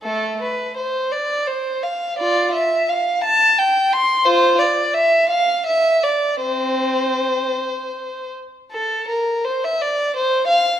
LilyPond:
\new Staff \with { instrumentName = "Violin" } { \time 6/8 \key c \major \tempo 4. = 56 << { a'8 b'8 c''8 d''8 c''8 f''8 | d''8 e''8 f''8 a''8 g''8 c'''8 | c''8 d''8 e''8 f''8 e''8 d''8 | c''2~ c''8 r8 |
\key f \major a'8 bes'8 c''16 e''16 d''8 c''8 f''8 | } \\ { a8 r2 r8 | f'8 r2 r8 | f'8 r2 r8 | c'4. r4. |
r2. | } >> }